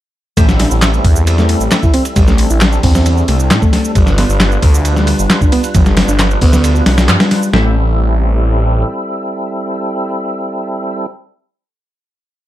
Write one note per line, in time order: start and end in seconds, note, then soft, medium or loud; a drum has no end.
0.37 0.66 A1 loud
0.37 7.50 G3 medium
0.37 0.45 A3 medium
0.37 3.92 C4 medium
0.37 2.15 E4 medium
0.37 3.92 A4 medium
0.37 kick loud
0.37 ride medium
0.37 shaker medium
0.49 snare medium
0.49 shaker soft
0.60 0.68 D4 medium
0.60 snare soft
0.60 open hi-hat medium
0.60 ride medium
0.71 0.99 A1 loud
0.71 shaker medium
0.82 snare loud
0.82 clap loud
0.82 ride medium
0.82 shaker medium
0.94 shaker soft
1.04 1.55 E2 loud
1.04 kick medium
1.04 open hi-hat medium
1.04 ride medium
1.16 shaker medium
1.27 ride medium
1.27 shaker medium
1.38 1.82 A3 medium
1.38 snare soft
1.38 shaker soft
1.49 open hi-hat medium
1.49 ride medium
1.60 1.68 A1 medium
1.60 shaker medium
1.71 snare loud
1.71 clap loud
1.71 ride medium
1.71 shaker medium
1.83 1.94 E4 medium
1.83 kick medium
1.83 shaker soft
1.94 2.02 C4 loud
1.94 open hi-hat medium
1.94 ride medium
2.05 ride soft
2.05 shaker medium
2.16 2.45 A1 loud
2.16 2.21 G3 loud
2.16 7.50 D4 medium
2.16 kick loud
2.16 ride medium
2.16 shaker medium
2.28 2.49 A3 medium
2.28 snare soft
2.28 shaker soft
2.38 open hi-hat medium
2.38 ride medium
2.50 2.79 A1 loud
2.50 2.58 E4 medium
2.50 shaker medium
2.61 2.66 G3 medium
2.61 snare loud
2.61 clap loud
2.61 ride medium
2.61 shaker medium
2.72 shaker soft
2.83 3.23 E2 loud
2.83 2.92 C4 loud
2.83 kick loud
2.83 open hi-hat medium
2.95 3.27 C4 medium
2.95 snare medium
2.95 shaker medium
3.06 ride medium
3.06 shaker medium
3.17 shaker soft
3.28 3.52 C2 medium
3.28 3.33 A3 medium
3.28 open hi-hat medium
3.28 ride medium
3.40 shaker medium
3.51 3.59 A2 medium
3.51 3.56 G3 medium
3.51 snare loud
3.51 clap loud
3.51 ride medium
3.51 shaker medium
3.62 3.95 A3 medium
3.62 kick medium
3.62 shaker soft
3.73 snare soft
3.73 open hi-hat medium
3.73 ride medium
3.85 shaker medium
3.95 4.24 G1 loud
3.95 4.04 G3 medium
3.95 7.50 F4 medium
3.95 7.50 B4 medium
3.95 kick loud
3.95 ride medium
3.95 shaker medium
4.07 snare medium
4.07 shaker soft
4.18 4.26 B3 medium
4.18 snare soft
4.18 open hi-hat medium
4.18 ride medium
4.29 4.58 G1 medium
4.29 shaker medium
4.40 snare loud
4.40 clap loud
4.40 ride medium
4.40 shaker medium
4.52 shaker soft
4.62 5.14 D2 loud
4.62 kick medium
4.62 open hi-hat medium
4.62 ride medium
4.74 shaker medium
4.85 ride medium
4.85 shaker medium
4.96 5.40 G3 medium
4.96 snare soft
4.96 shaker soft
5.07 open hi-hat medium
5.07 ride medium
5.19 5.27 G1 medium
5.19 shaker medium
5.30 snare loud
5.30 clap loud
5.30 ride medium
5.30 shaker medium
5.41 5.52 D4 medium
5.41 kick loud
5.41 shaker soft
5.52 5.61 B3 loud
5.52 open hi-hat medium
5.52 ride medium
5.64 ride soft
5.64 shaker medium
5.74 6.03 G1 loud
5.74 5.80 F3 loud
5.74 kick loud
5.74 ride loud
5.74 shaker medium
5.86 6.07 G3 medium
5.86 snare soft
5.86 shaker soft
5.97 snare loud
5.97 open hi-hat medium
5.97 ride medium
6.08 6.37 G1 loud
6.08 6.16 D4 medium
6.08 shaker medium
6.19 6.24 F3 medium
6.19 snare loud
6.19 clap loud
6.19 ride medium
6.19 shaker medium
6.31 shaker soft
6.41 6.81 D2 loud
6.41 6.50 B3 loud
6.41 kick loud
6.41 open hi-hat medium
6.53 6.85 B3 medium
6.53 snare medium
6.53 shaker medium
6.64 ride medium
6.64 shaker medium
6.76 shaker soft
6.86 7.10 B1 medium
6.86 6.91 G3 medium
6.86 snare loud
6.86 open hi-hat medium
6.86 ride medium
6.98 snare loud
6.98 ride medium
6.98 shaker medium
7.08 7.17 G2 medium
7.08 7.14 F3 medium
7.08 snare loud
7.08 clap loud
7.08 ride medium
7.08 shaker soft
7.20 7.53 G3 loud
7.20 snare loud
7.20 ride medium
7.20 shaker soft
7.31 snare soft
7.31 open hi-hat medium
7.31 ride medium
7.43 shaker medium
7.53 8.84 A1 loud
7.53 11.06 G3 medium
7.53 7.75 A3 medium
7.53 11.06 C4 medium
7.53 11.06 E4 medium
7.53 11.06 A4 medium
7.53 snare loud